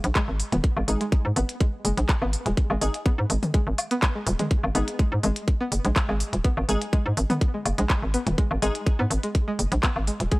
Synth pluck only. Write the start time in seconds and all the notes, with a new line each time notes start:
0.15 G#3
0.52 B3
0.77 G#3
1.01 G#3
1.36 B3
1.61 G#3
1.85 G#3
2.22 B3
2.46 G#3
2.70 G#3
3.06 B3
3.30 G#3
3.54 G#3
3.91 B3
4.15 G#3
4.40 G#3
4.75 B3
4.99 G#3
5.24 G#3
5.61 B3
5.85 G#3
6.09 G#3
6.45 B3
6.69 G#3
6.93 G#3
7.30 B3
7.54 G#3
7.78 G#3
8.14 B3
8.38 G#3
8.62 G#3
8.99 B3
9.24 G#3
9.48 G#3
9.83 B3
10.07 G#3
10.32 G#3